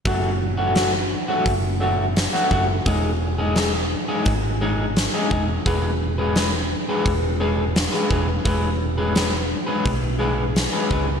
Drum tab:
HH |o---o---o---o---|o---o---o---o---|o---o---o---o---|o---o---o---o---|
SD |----o-------oo--|----o-------o---|----o-------oo--|----o-------o---|
BD |o-------o-----o-|o-------o-----o-|o-------o-----o-|o-------o-----o-|